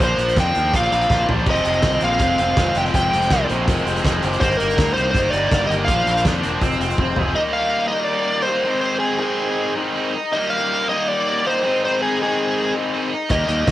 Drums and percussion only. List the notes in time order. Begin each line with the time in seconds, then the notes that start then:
0.00 closed hi-hat
0.18 closed hi-hat
0.28 closed hi-hat
0.36 kick, snare, closed hi-hat
0.55 closed hi-hat
0.73 kick, closed hi-hat
0.92 closed hi-hat
1.02 closed hi-hat
1.10 kick, snare
1.29 floor tom
1.47 kick, crash
1.56 closed hi-hat
1.65 closed hi-hat
1.73 closed hi-hat
1.82 kick, snare, closed hi-hat
1.92 closed hi-hat
2.01 closed hi-hat
2.19 kick, closed hi-hat
2.38 closed hi-hat
2.57 kick, snare, closed hi-hat
2.75 closed hi-hat
2.85 snare
2.94 kick, closed hi-hat
3.13 closed hi-hat
3.22 closed hi-hat
3.30 kick, snare, closed hi-hat
3.49 closed hi-hat
3.68 kick, closed hi-hat
3.77 closed hi-hat
3.87 closed hi-hat
3.96 closed hi-hat
4.04 kick, snare, closed hi-hat
4.23 closed hi-hat
4.33 closed hi-hat
4.41 kick, closed hi-hat
4.52 closed hi-hat
4.60 closed hi-hat
4.70 closed hi-hat
4.78 kick, snare, closed hi-hat
4.88 closed hi-hat
4.97 closed hi-hat
5.15 kick, closed hi-hat
5.33 closed hi-hat
5.51 kick, snare, closed hi-hat
5.71 closed hi-hat
5.88 kick, closed hi-hat
6.07 closed hi-hat
6.17 closed hi-hat
6.25 kick, snare, closed hi-hat
6.43 closed hi-hat
6.62 kick, closed hi-hat
6.72 closed hi-hat
6.81 closed hi-hat
6.90 closed hi-hat
6.98 kick
7.16 floor tom
13.30 kick, closed hi-hat
13.48 closed hi-hat
13.67 kick, snare, closed hi-hat